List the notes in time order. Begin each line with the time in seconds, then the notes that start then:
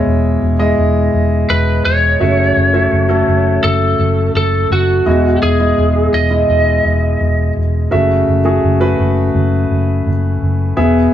Already playing: B2 G#3 E4 C#5 D#5
0.06 E1
0.42 E1
0.59 G#3 E4 D#5
0.78 E1
1.14 E1
1.49 E1 B4
1.85 E1 C#5
2.20 F#1 C#3 A3 F#4 E5
2.56 F#1
2.73 A3 F#4 E5
2.92 F#1
3.09 A3 F#4 A4
3.28 F#1
3.63 F#1 A4
3.99 F#1
4.35 F#1 A4
4.70 F#1 F#4
5.06 E1 B2 G#3 E4 D#5
5.42 E1 G#4
5.59 G#3 E4 D#5
5.77 E1
6.13 E1 D#5
6.30 G#3 E4 D#5
6.48 E1
6.84 E1
7.20 E1
7.56 E1
7.91 F#1 C#3 A3 F#4 E5
8.28 F#1
8.45 A3 F#4 G#4
8.63 F#1
8.80 A3 F#4 B4
8.99 F#1
9.34 F#1
9.70 F#1
10.06 F#1
10.42 F#1
10.77 E1 B2 B3 G#4 E5